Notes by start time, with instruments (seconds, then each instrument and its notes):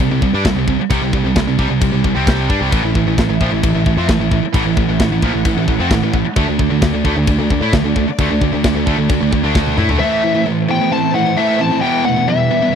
0.00 distorted electric guitar C3 G3, crash
0.11 picked electric bass C2, distorted electric guitar C3 G3
0.22 picked electric bass C2, distorted electric guitar C3 G3, kick
0.33 picked electric bass G2, distorted electric guitar G3 D4
0.45 picked electric bass C2, distorted electric guitar C3 G3, kick, snare, crash
0.55 picked electric bass C2, distorted electric guitar C3 G3
0.68 picked electric bass C2, distorted electric guitar C3 G3, kick
0.79 muted picked electric bass stroke, muted distorted electric guitar stroke
0.90 picked electric bass C2, distorted electric guitar C3 G3, kick, crash
1.02 picked electric bass C2, distorted electric guitar C3 G3
1.13 picked electric bass C2, distorted electric guitar C3 G3, kick
1.24 picked electric bass C2, distorted electric guitar C3 G3
1.36 picked electric bass C2, distorted electric guitar C3 G3, kick, snare, crash
1.47 picked electric bass C2, distorted electric guitar C3 G3
1.59 picked electric bass C2, distorted electric guitar C3 G3, kick
1.70 picked electric bass C2, distorted electric guitar C3 G3
1.81 picked electric bass C2, distorted electric guitar C3 G3, kick, crash
1.93 picked electric bass C2, distorted electric guitar C3 G3
2.04 picked electric bass C2, distorted electric guitar C3 G3, kick
2.16 picked electric bass C2, distorted electric guitar C3 G3 C4
2.27 kick, snare, crash
2.50 picked electric bass G2, distorted electric guitar G3 D4, kick
2.61 picked electric bass C2, distorted electric guitar C3 G3
2.72 picked electric bass A1, distorted electric guitar A2 E3, string section A3 E4 E5, kick, crash
2.83 picked electric bass A1, distorted electric guitar A2 E3
2.95 picked electric bass A1, distorted electric guitar A2 E3, kick
3.06 picked electric bass A1, distorted electric guitar A2 E3
3.18 picked electric bass A1, distorted electric guitar A2 E3, kick, snare, crash
3.29 picked electric bass A1, distorted electric guitar A2 E3
3.41 picked electric bass A#1, distorted electric guitar A#2 F3, kick
3.52 picked electric bass A1, distorted electric guitar A2 E3
3.63 picked electric bass A1, distorted electric guitar A2 E3, kick, crash
3.75 picked electric bass A1, distorted electric guitar A2 E3
3.86 picked electric bass A1, distorted electric guitar A2 E3, kick
3.97 picked electric bass F2, distorted electric guitar F3 C4
4.09 picked electric bass A1, distorted electric guitar A2 E3, kick, snare, crash
4.20 picked electric bass A1, distorted electric guitar A2 E3
4.31 picked electric bass A1, distorted electric guitar A2 E3, kick
4.43 muted picked electric bass stroke, muted distorted electric guitar stroke
4.53 picked electric bass A1, distorted electric guitar A2 E3, string section F#5, kick, crash
4.66 picked electric bass A1, distorted electric guitar A2 E3
4.77 picked electric bass A1, distorted electric guitar A2 E3, kick
4.88 picked electric bass A1, distorted electric guitar A2 E3
5.00 picked electric bass A1, distorted electric guitar A2 E3, kick, snare, crash
5.11 picked electric bass A1, distorted electric guitar A2 E3
5.22 picked electric bass A#1, distorted electric guitar A#2 F3, kick
5.34 picked electric bass A1, distorted electric guitar A2 E3
5.45 picked electric bass A1, distorted electric guitar A2 E3, kick, crash
5.57 picked electric bass A1, distorted electric guitar A2 E3
5.68 picked electric bass A1, distorted electric guitar A2 E3, kick
5.79 picked electric bass F2, distorted electric guitar F3 C4
5.90 picked electric bass A1, distorted electric guitar A2 E3, kick, snare, crash
6.02 picked electric bass A1, distorted electric guitar A2 E3
6.13 picked electric bass A1, distorted electric guitar A2 E3, kick
6.25 muted distorted electric guitar stroke
6.36 picked electric bass D2, distorted electric guitar D3 A3, string section D4 D5, kick, crash
6.47 picked electric bass D2, distorted electric guitar D3 A3
6.59 picked electric bass D2, distorted electric guitar D3 A3, kick
6.70 picked electric bass D2, distorted electric guitar D3 A3
6.82 picked electric bass D2, distorted electric guitar D3 A3, kick, snare, crash
6.94 picked electric bass D2, distorted electric guitar D3 A3
7.04 picked electric bass D2, distorted electric guitar D3 A3, kick
7.16 picked electric bass D2, distorted electric guitar D3 A3
7.27 picked electric bass D2, distorted electric guitar D3 A3, kick, crash
7.39 picked electric bass D2, distorted electric guitar D3 A3
7.50 picked electric bass D2, distorted electric guitar D3 A3, kick
7.61 picked electric bass A2, distorted electric guitar A3 E4
7.73 picked electric bass D2, distorted electric guitar D3 A3, kick, snare, crash
7.84 picked electric bass D2, distorted electric guitar D3 A3
7.96 picked electric bass D2, distorted electric guitar D3 A3, kick
8.08 muted picked electric bass stroke, muted distorted electric guitar stroke
8.18 picked electric bass D2, distorted electric guitar D3 A3, kick, crash
8.31 picked electric bass D2, distorted electric guitar D3 A3
8.41 picked electric bass D2, distorted electric guitar D3 A3, kick
8.53 picked electric bass D2, distorted electric guitar D3 A3
8.64 picked electric bass D2, distorted electric guitar D3 A3, kick, snare, crash
8.76 picked electric bass D2, distorted electric guitar D3 A3
8.87 picked electric bass D2, distorted electric guitar D3 A3, kick
8.98 picked electric bass D2, distorted electric guitar D3 A3
9.09 picked electric bass D2, distorted electric guitar D3 A3, kick, crash
9.22 picked electric bass D2, distorted electric guitar D3 A3
9.33 picked electric bass D2, distorted electric guitar D3 A3, kick
9.44 picked electric bass D2, distorted electric guitar D3 A3 D4
9.55 kick, snare
9.67 high tom
9.78 picked electric bass A2, distorted electric guitar A3 E4, mid tom
9.89 picked electric bass D2, distorted electric guitar D3 A3, floor tom
10.00 distorted electric guitar A2 E3 A3, lead electric guitar A3 E5, string section A3 E4 C5
10.23 distorted electric guitar A2 E3
10.34 distorted electric guitar A2 E3
10.46 distorted electric guitar A2 E3
10.69 distorted electric guitar A2 E3, lead electric guitar B3 G5
10.81 distorted electric guitar A2 E3
10.92 distorted electric guitar A2 E3, lead electric guitar C4 A5
11.14 distorted electric guitar A2 E3, lead electric guitar A3 F#5
11.26 distorted electric guitar A2 E3
11.37 distorted electric guitar A2 E3 A3, lead electric guitar A3 E5
11.59 distorted electric guitar A2 E3, lead electric guitar C4 A5
11.72 distorted electric guitar A2 E3
11.81 distorted electric guitar E2 B2 E3, string section G3 B4, lead electric guitar B3 G5
12.05 distorted electric guitar E2 B2, lead electric guitar A3 F#5
12.16 distorted electric guitar E2 B2
12.28 distorted electric guitar E2 B2, lead electric guitar G3 E5
12.51 distorted electric guitar E2 B2
12.62 distorted electric guitar E2 B2